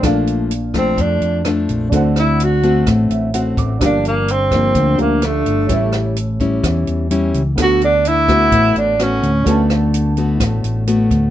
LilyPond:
<<
  \new Staff \with { instrumentName = "Grand piano" } { \time 4/4 \key d \major \tempo 4 = 127 << { r1 | r2 r8 e''8 fis''8 d'''8 | r1 | r1 |
r1 | r1 | } \\ { <bes d' a' f''>1 | <d' a' c'' fis''>1 | <d' g' bes' f''>2~ <d' g' bes' f''>8 <d' g' f'' bes''>4. | <cis' g' a' e''>1 |
<b a' b' fis''>1 | <d' a' b' a''>1 | } >> }
  \new Staff \with { instrumentName = "Tenor saxophone" } { \time 4/4 \key d \major r4. c'8 d'4 r4 | r8 e'8 fis'4 r2 | d'8 bes8 c'4. bes8 a4~ | a8 r2. r8 |
fis'8 d'8 e'4. d'8 cis'4~ | cis'8 r2. r8 | }
  \new Staff \with { instrumentName = "Nylon-string guitar" } { \time 4/4 \key d \major << { <f a d'>4 r8 <f a d'>4. <f a d'>4 | <a c' fis'>4. <a c' fis'>4. <a c' fis'>4 | <f bes d'>4 r8 <f bes d'>4. <f d'>4 | <g cis' e'>4 r8 <g cis' e'>4. <g cis' e'>8 r8 |
<a b fis'>4 r8 <a b fis'>4. <a b fis'>8 r8 | <a b fis'>4. <a b fis'>4. <a b fis'>4 | } \\ { bes,2 f,2 | d2 a,2 | g,2 d2 | a,2 e2 |
d2 a,2 | d2 a,2 | } >> }
  \new Staff \with { instrumentName = "Fingered electric bass" } { \clef bass \time 4/4 \key d \major bes,,2 f,8 f,4 bes,,8 | d,2 a,,8 a,,4 a,,8 | g,,2 d,8 d,4 g,,8 | a,,2 e,8 e,4 cis,8 |
d,2 a,,8 a,,4 d,8 | d,2 a,,8 a,,4 d,8 | }
  \new DrumStaff \with { instrumentName = "Drums" } \drummode { \time 4/4 <hh bd ss>8 hh8 hh8 <hh bd ss>8 <hh bd>8 hh8 <hh ss>8 hh8 | <hh bd>8 <hh ss>8 hh8 hh8 <hh bd ss>8 hh8 hh8 <hh bd>8 | <hh bd ss>8 hh8 hh8 <hh bd ss>8 <hh bd>8 hh8 <hh ss>8 hh8 | <hh bd>8 <hh ss>8 hh8 <hh bd>8 <hh bd ss>8 hh8 hh8 hh8 |
<hh bd ss>8 hh8 hh8 <hh bd ss>8 <hh bd>8 hh8 <hh ss>8 hh8 | <hh bd>8 <hh ss>8 hh8 hh8 <hh bd ss>8 hh8 hh8 <hh bd>8 | }
>>